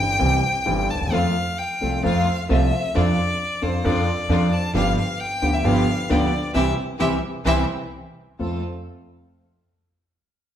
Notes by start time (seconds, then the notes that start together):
Already playing: G1 G2 E3 G3 C4 G4 G5
0.19 C2 C3 E3 G3 C4 G4
0.66 G1 G2 E3 G3 C4 G4
0.90 A5
0.94 D2
0.99 D#2
1.06 E2
1.11 F2 F3 A3 C4 F4 A4 F5
1.58 G5
1.81 C2 C3 F3 A3 C4 F4 A4
2.03 F2 F3 A3 C4 F4 A4 F5
2.49 C2 C3 F3 A3 C4 F4 A4 E5
2.95 F2 F3 C4 D4 F4 A4 D5
3.61 F2 F3 C4 D4 F4 A4 C5
3.84 F2 F3 C4 D4 F4 A4 D5
4.29 F2 F3 C4 D4 F4 A4
4.53 A5
4.74 G1 G2 F3 B3 D4 F4 G4 F5
4.98 F5
5.20 G5
5.42 D2 D3 F3 B3 D4 F4 G4
5.54 E5
5.64 G1 G2 F3 B3 D4 F4 G4 F5
6.09 D2 D3 F3 B3 D4 F4 G4 D5
6.54 C2 C3 E3 G3 C4 E4 G4 E5
7.00 C2 C3 E3 G3 C4 E4 G4 E5
7.45 C2 C3 E3 G3 C4 E4 G4 E5
8.39 F2 A3 C4 F4 A4